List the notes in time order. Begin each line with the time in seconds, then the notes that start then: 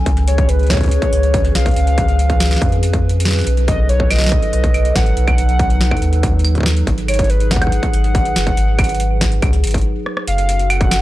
Already playing: C#4
0.06 C#2 F3 G#4 B4, kick, closed hi-hat
0.17 closed hi-hat
0.28 C#5, closed hi-hat
0.38 kick, closed hi-hat
0.49 B4, closed hi-hat
0.59 closed hi-hat
0.63 closed hi-hat
0.67 snare, closed hi-hat
0.70 C#5, kick, closed hi-hat
0.74 kick, closed hi-hat
0.77 kick, closed hi-hat
0.81 kick, closed hi-hat
0.83 kick, closed hi-hat
0.86 kick, closed hi-hat
0.89 closed hi-hat
0.91 closed hi-hat
1.02 kick, closed hi-hat
1.13 C#2, closed hi-hat
1.23 closed hi-hat
1.34 kick, closed hi-hat
1.45 closed hi-hat
1.55 B1 F5, snare, closed hi-hat
1.66 kick, closed hi-hat
1.68 closed hi-hat
1.71 closed hi-hat
1.74 C#2, closed hi-hat
1.76 closed hi-hat
1.87 closed hi-hat
1.98 kick, closed hi-hat
2.08 closed hi-hat
2.19 closed hi-hat
2.30 kick, closed hi-hat
2.40 snare, closed hi-hat
2.46 snare
2.51 snare, closed hi-hat
2.54 snare, closed hi-hat
2.58 F2, kick, closed hi-hat
2.62 closed hi-hat
2.65 closed hi-hat
2.69 closed hi-hat
2.72 closed hi-hat
2.83 closed hi-hat
2.93 kick, closed hi-hat
3.09 closed hi-hat
3.20 closed hi-hat
3.25 snare
3.28 snare
3.31 snare
3.33 snare
3.36 snare
3.39 snare
3.41 snare, closed hi-hat
3.44 B1 F#3 D#4 A4, snare, closed hi-hat
3.57 closed hi-hat
3.68 D#5, kick, closed hi-hat
3.89 C#5, closed hi-hat
4.00 kick
4.11 D#5, snare, closed hi-hat, claves
4.13 snare
4.16 snare
4.18 snare
4.21 snare, closed hi-hat
4.24 snare
4.26 snare
4.29 kick, snare, closed hi-hat
4.42 closed hi-hat
4.53 B1, closed hi-hat
4.64 kick, closed hi-hat
4.74 closed hi-hat, claves
4.85 closed hi-hat
4.96 A1 F#5, kick, snare, closed hi-hat
5.06 closed hi-hat
5.17 B1, closed hi-hat
5.28 kick, closed hi-hat, claves
5.38 closed hi-hat
5.49 closed hi-hat
5.59 kick, closed hi-hat
5.70 closed hi-hat
5.81 snare
5.91 kick, claves
5.97 closed hi-hat
6.02 D#2, closed hi-hat
6.13 closed hi-hat
6.23 kick, closed hi-hat
6.39 closed hi-hat
6.45 closed hi-hat, claves
6.55 kick, closed hi-hat
6.58 kick
6.61 kick
6.63 kick, snare
6.76 closed hi-hat
6.87 G#1 G#4 B4, kick, closed hi-hat
6.98 closed hi-hat
7.08 C#5, closed hi-hat, claves
7.14 closed hi-hat
7.19 kick, closed hi-hat
7.24 closed hi-hat
7.30 B4, closed hi-hat
7.40 closed hi-hat
7.51 F#5, kick, snare, closed hi-hat
7.56 kick
7.62 kick, closed hi-hat, claves
7.67 kick
7.72 closed hi-hat
7.83 kick, closed hi-hat
7.93 G#1, closed hi-hat
8.04 closed hi-hat
8.15 kick, closed hi-hat
8.25 closed hi-hat
8.36 F#1, snare, closed hi-hat
8.47 kick, closed hi-hat
8.57 G#1, closed hi-hat
8.79 kick, closed hi-hat, claves
8.84 closed hi-hat
8.89 closed hi-hat
8.95 closed hi-hat
9.00 closed hi-hat
9.21 kick, snare, closed hi-hat
9.32 closed hi-hat
9.42 C#2, kick, closed hi-hat, claves
9.53 closed hi-hat
9.64 G#1, closed hi-hat
9.67 closed hi-hat
9.71 kick, closed hi-hat
9.74 closed hi-hat
9.78 closed hi-hat
9.81 closed hi-hat
10.06 cross-stick
10.17 cross-stick
10.28 F#1 A3 C#4 F#4 A4 F5, closed hi-hat
10.38 closed hi-hat
10.49 closed hi-hat
10.59 closed hi-hat
10.70 F#5, closed hi-hat, claves
10.81 kick, closed hi-hat
10.91 snare, closed hi-hat, claves